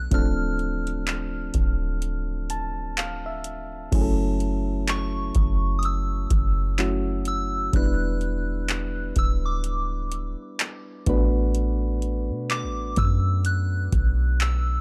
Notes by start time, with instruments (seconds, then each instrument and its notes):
Already playing: synth bell F#6
0.11 808-style bass D1, synth keys F3 A3 C4 D4 A4, synth bell F6, kick, closed hi-hat
0.59 closed hi-hat
0.87 closed hi-hat
1.07 clap, closed hi-hat
1.54 808-style bass D1, kick, closed hi-hat
2.02 closed hi-hat
2.50 synth keys A5, closed hi-hat
2.97 synth keys F5, clap, closed hi-hat
3.26 synth keys E5
3.44 closed hi-hat
3.92 808-style bass F#1, synth keys F#3 A3 C#4 E4 G#4, kick, closed hi-hat, crash
4.01 synth keys A4
4.40 closed hi-hat
4.88 synth bell C#6, clap, closed hi-hat
5.35 808-style bass F#1, kick, closed hi-hat
5.79 synth bell D#6, closed hi-hat
5.85 synth bell E6
6.30 808-style bass F#1, kick, closed hi-hat
6.78 synth keys F#3 A3 C#4 E4 F#4, clap, closed hi-hat
7.25 synth bell E6, closed hi-hat
7.73 808-style bass E1, synth keys G3 B3 D4 E4 B4, synth bell F#6, kick, closed hi-hat
8.21 closed hi-hat
8.69 clap, closed hi-hat
9.16 808-style bass D1, synth bell E6, kick, closed hi-hat
9.45 synth bell D6
9.64 closed hi-hat
10.12 closed hi-hat
10.59 clap, closed hi-hat
11.06 808-style bass A1, synth keys A3 B3 D4 F#4 B4, kick, closed hi-hat
11.55 closed hi-hat
12.02 closed hi-hat
12.30 808-style bass B2
12.50 synth bell D6, clap, closed hi-hat
12.64 808-style bass A1
12.96 808-style bass F#2, synth bell E6, kick, closed hi-hat
13.45 synth bell F#6, closed hi-hat
13.92 808-style bass B1, kick, closed hi-hat
14.40 synth bell E6, clap, closed hi-hat